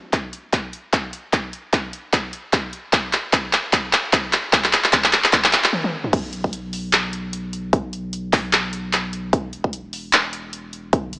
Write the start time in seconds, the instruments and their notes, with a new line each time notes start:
0.13 kick, clap, closed hi-hat
0.33 closed hi-hat
0.53 kick, clap, closed hi-hat
0.73 closed hi-hat
0.93 kick, clap, closed hi-hat
1.13 closed hi-hat
1.33 kick, clap, closed hi-hat
1.53 closed hi-hat
1.73 kick, clap, closed hi-hat
1.93 closed hi-hat
2.13 kick, clap, closed hi-hat
2.33 closed hi-hat
2.53 kick, clap, closed hi-hat
2.73 closed hi-hat
2.93 kick, clap, closed hi-hat
3.13 clap, closed hi-hat
3.33 kick, clap, closed hi-hat
3.53 clap, closed hi-hat
3.73 kick, clap, closed hi-hat
3.93 clap, closed hi-hat
4.13 kick, clap, closed hi-hat
4.33 clap, closed hi-hat
4.53 kick, clap, closed hi-hat
4.64 clap
4.73 clap, closed hi-hat
4.84 clap
4.93 kick, clap, closed hi-hat
5.04 clap
5.13 clap, closed hi-hat
5.24 clap
5.33 kick, clap, closed hi-hat
5.44 clap
5.53 clap, closed hi-hat
5.64 clap
5.73 high tom
5.84 high tom
6.04 mid tom
6.13 sub bass B1, kick, closed hi-hat, crash
6.33 closed hi-hat
6.44 kick
6.53 closed hi-hat
6.73 open hi-hat
6.93 clap, closed hi-hat
7.13 closed hi-hat
7.33 closed hi-hat
7.53 closed hi-hat
7.73 sub bass B1, kick, closed hi-hat
7.93 closed hi-hat
8.13 closed hi-hat
8.33 kick, clap, open hi-hat
8.53 clap, closed hi-hat
8.73 closed hi-hat
8.93 clap, closed hi-hat
9.13 closed hi-hat
9.33 sub bass E1, kick, closed hi-hat
9.53 closed hi-hat
9.64 kick
9.73 closed hi-hat
9.93 open hi-hat
10.13 clap, closed hi-hat
10.33 closed hi-hat
10.53 closed hi-hat
10.73 closed hi-hat
10.93 sub bass G1, kick, closed hi-hat
11.13 closed hi-hat